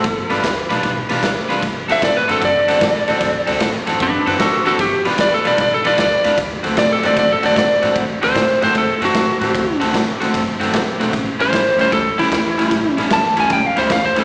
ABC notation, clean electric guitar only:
X:1
M:4/4
L:1/8
Q:"Swing" 1/4=152
K:Dmix
V:1 name="Clean electric guitar"
z [G,D=FB] z [G,DFB] z [G,DFB] z [G,DFB] | z [D,CFA] z [D,CFA] z [D,CFA] z [D,CFA] | z [D,CFA] z [D,CFA] z [D,CFA] z [D,CFA] | z [G,D=FB] z [G,DFB] z [G,DFB] z [G,DFB] |
z [D,A,CF] z [D,A,CF] z [D,A,CF] z [D,A,CF] | z [D,A,CF] z [D,A,CF] z [D,A,CF] z [D,A,CF] | z [D,A,CF] z [D,A,CF] z [D,A,CF] z [D,A,CF] | z [A,,G,^CE] z [A,,G,CE] z [A,,G,CE] z [A,,G,CE] |
z [A,,G,^CE] z [A,,G,CE] z [A,,G,CE] z [A,,G,CE] |]